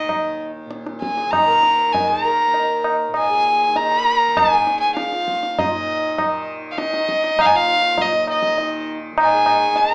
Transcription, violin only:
Already playing: D#5
1.01 G#5
1.31 A#5
1.93 G#5
2.08 A#5
3.18 G#5
3.77 A#5
4.37 G#5
4.81 G#5
4.96 F5
5.59 D#5
6.71 F5
6.78 D#5
7.41 F5
7.46 G#5
7.56 F5
8.02 D#5
8.31 D#5
9.21 G#5
9.78 A#5

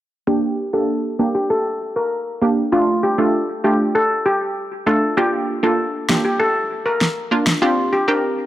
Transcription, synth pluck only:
0.27 A#3 D4 G4
0.73 A#3 D4 G4
1.19 A#3 D4 G4
2.42 A#3 D4 G4
2.72 A3 D4 F4
3.18 A3 D4 F4
3.64 A3 D4 F4
4.86 A3 D4 F4
5.17 A#3 D4 F4
5.63 A#3 D4 F4
6.09 A#3 D4 F4
7.31 A#3 D4 F4
7.62 C4 D4 G4
8.08 C4 D4 G4

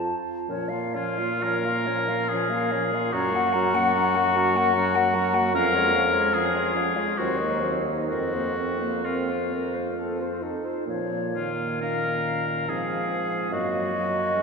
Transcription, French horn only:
Already playing: F4
0.48 F3
0.71 A#3
0.97 F3
1.20 A#3
1.43 F3
1.65 A#3
1.88 F3
2.10 A#3
2.31 F3
2.52 A#3
2.72 F3
2.93 A#3
3.14 F#3
3.33 A#3
3.55 F#3
3.74 A#3
3.95 F#3
4.16 A#3
4.36 F#3
4.56 A#3
4.75 F#3
4.95 A#3
5.14 F#3
5.34 A#3
5.54 F3
5.72 G#3
5.94 F3
6.14 G#3
6.33 F3
6.54 G#3
6.75 F3
6.96 G#3
7.17 F#3
7.40 A#3
7.63 F#3
7.86 A#3
8.10 C4
8.35 A#3
8.58 C4
8.81 A#3
9.06 C4
9.51 F4
10.42 D#4
10.87 F3
11.35 D#3
12.70 F3
13.52 F#3
13.95 F#3
14.37 G#3

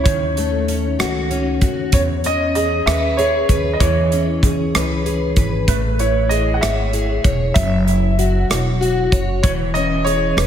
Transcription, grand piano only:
0.04 C#5
1.94 C#5
2.26 D#5
2.55 D#5
2.86 E5
3.17 C#5
3.73 D#5
3.80 C#5
5.68 B4
6.00 C#5
6.29 D#5
6.54 F#5
6.61 E5
7.54 E5
9.43 C#5
9.74 D#5
10.05 C#5

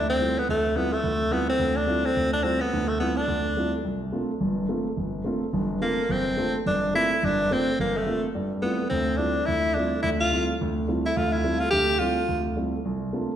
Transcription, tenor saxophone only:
0.10 C4
0.38 B3
0.50 A3
0.77 B3
0.93 A3
1.33 B3
1.50 C4
1.76 D4
2.05 C4
2.33 D4
2.43 C4
2.60 B3
2.88 A3
3.00 B3
3.17 D4
5.82 A#3
6.11 C4
6.67 D4
6.95 E4
7.25 D4
7.53 C4
7.80 A#3
7.97 A3
8.62 B3
8.90 C4
9.17 D4
9.46 E4
9.74 D4
10.03 E4
10.21 F4
11.06 E4
11.17 F4
11.32 E4
11.60 F4
11.71 G4
11.99 F4

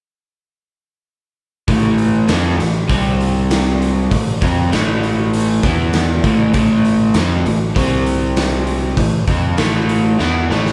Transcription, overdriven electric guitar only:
1.68 A2 E3 A3
2.28 F3 C4 F4
2.58 A2 E3
2.88 C3 G3 C4
4.11 A2 E3
4.41 F3 C4 F4
4.71 A2 E3 A3
5.63 E3 B3 E4
6.24 A2 E3 A3
6.54 A2 E3 A3
7.15 F3 C4 F4
7.46 A2 E3
7.75 C3 G3 C4
8.98 A2 E3
9.28 F3 C4 F4
9.58 A2 E3 A3
10.19 E3 B3 E4
10.50 A2 E3 A3

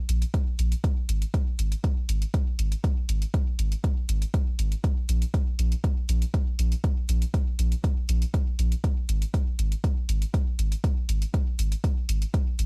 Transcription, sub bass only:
0.09 A#1
0.59 A#1
1.09 G#1
1.59 G#1
2.09 G#1
2.59 G#1
3.09 G#1
3.59 G#1
4.09 G#1
4.59 G#1
5.09 A#1
5.59 A#1
6.09 A#1
6.59 A#1
7.09 A#1
7.59 A#1
8.09 A#1
8.59 A#1
9.09 G#1
9.59 G#1
10.09 G#1
10.59 G#1
11.09 G#1
11.59 G#1
12.09 G#1
12.59 G#1

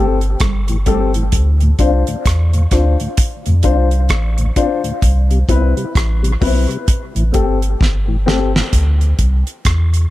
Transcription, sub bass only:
Already playing: G1
0.41 G1
1.33 D2
1.79 C2
2.26 E2
2.72 D2
3.47 F2
3.64 C2
4.11 A1
5.03 C2
5.49 C2
5.96 A1
6.42 B1
7.16 A1
7.35 G1
7.81 G1
8.73 D2
9.19 C2
9.66 E2

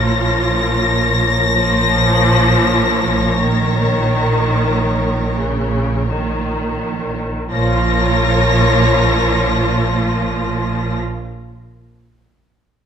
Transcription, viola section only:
Already playing: F3 F4
1.54 F3
3.42 D#3
5.39 C#3
6.09 D#3
7.52 F3 F4

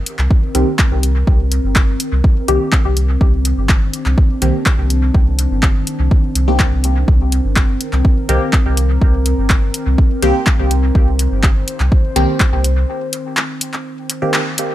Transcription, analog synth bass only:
0.19 C2
0.55 C2
0.91 C2
1.27 C2
1.64 G1
2.12 C2
2.48 C2
2.85 C2
3.21 C2
3.58 G1
4.06 C2
4.42 C2
4.79 C2
5.14 C2
5.51 G1
5.99 C2
6.35 C2
6.72 C2
7.08 C2
7.45 G1
7.93 C2
8.29 C2
8.66 C2
9.01 C2
9.38 G1
9.87 C2
10.23 C2
10.59 C2
10.95 C2
11.32 G1
11.80 C2
12.16 C2
12.53 C2

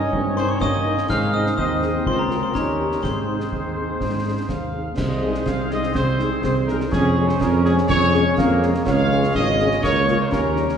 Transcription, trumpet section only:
Already playing: D#5
0.37 C5
0.50 C#5
0.61 D#5
1.10 F5
1.34 D#5
1.58 D#5
2.07 C5
2.19 A#4
2.43 C5
2.55 A#4
3.03 C5
4.49 F5
4.98 D#5
5.47 F5
5.71 D#5
5.95 C5
6.43 C5
6.67 A#4
6.92 G#4
7.28 C5
7.40 A#4
7.64 G#4
7.88 C#5
8.86 F5
9.35 D#5
9.83 C#5
10.21 C5
10.31 A#4

